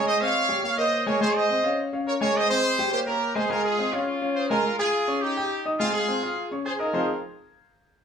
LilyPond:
<<
  \new Staff \with { instrumentName = "Grand piano" } { \time 4/4 \key f \minor \tempo 4 = 209 <aes aes' aes''>8 <c' c'' ees''>4 <g g' g''>8 <bes bes' des''>8 <bes bes' des''>4 <aes aes' aes''>8 | <aes aes' aes''>4 <c' c'' ees''>8 <des' des'' f''>4 <des' des'' f''>4 <aes aes' aes''>8~ | <aes aes' aes''>8 <c' c'' ees''>4 <g g' g''>8 <bes bes' des''>8 <bes bes' des''>4 <aes aes' aes''>8 | <aes aes' aes''>4 <c' c'' ees''>8 <des' des'' f''>4 <des' des'' f''>4 <aes aes' aes''>8 |
r8 <aes' aes'' aes'''>4 <des' des'' des'''>4 <g' g'' g'''>4 <ees' ees'' ees'''>8 | <aes aes' aes''>4 <c' c'' c'''>8 <f' f'' f'''>4 <des' des'' des'''>8 <aes' aes'' aes'''>8 <ees' ees'' ees'''>8 | <f c' ees' f' aes' c''>8 r2. r8 | }
  \new Staff \with { instrumentName = "Horn section" } { \time 4/4 \key f \minor << { ees''8 f''4. f''8 ees''4 des''8 | c''8 ees''4. r4 des''8 des''8 | ees''8 c''4. c''8 bes'4 c''8 | bes'8 aes'4 f'8 f'4 c''8 bes'8~ |
bes'8 aes'4. g'4. r8 | f'8 aes'2 r8 c''8 bes'8 | aes'8 r2. r8 | } \\ { c''8 des''4. des''8 c''4 bes'8 | aes'8 c''4. r4 bes'8 bes'8 | c''8 aes'4. g'8 g'4 aes'8 | f'8 f'4 des'8 des'4 aes'8 f'8~ |
f'8 f'4. ees'4. r8 | c'8 f'2 r8 aes'8 f'8~ | f'4 r2. | } >> }
>>